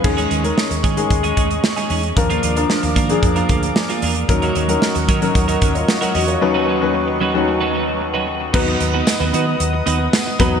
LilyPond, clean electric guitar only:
\new Staff \with { instrumentName = "Clean electric guitar" } { \time 4/4 \key ces \lydian \tempo 4 = 113 r16 <aes des' ees' aes'>16 <aes des' ees' aes'>16 r8. <aes des' ees' aes'>8 r16 <aes des' ees' aes'>16 <aes des' ees' aes'>16 r8 <aes des' ees' aes'>16 <aes des' ees' aes'>16 r16 | r16 <bes d' f' bes'>16 <bes d' f' bes'>16 r8. <bes d' f' bes'>8 r16 <bes d' f' bes'>16 <bes d' f' bes'>16 r8 <bes d' f' bes'>16 <bes d' f' bes'>8 | r16 <ges des' ees' bes'>16 <ges des' ees' bes'>16 r8. <ges des' ees' bes'>8 r16 <ges des' ees' bes'>16 <ges des' ees' bes'>16 r8 <ges des' ees' bes'>16 <ges des' ees' bes'>16 r16 | r16 <fis cis' dis' b'>16 <fis cis' dis' b'>16 r8. <fis cis' dis' b'>8 r16 <fis cis' dis' b'>16 <fis cis' dis' b'>16 r8 <fis cis' dis' b'>8 r16 |
<b dis' fis' b'>8 r16 <b dis' fis' b'>16 r16 <b dis' fis' b'>16 <b dis' fis' b'>8 r8 <b dis' fis' b'>8 r8 <b dis' fis' b'>8 | }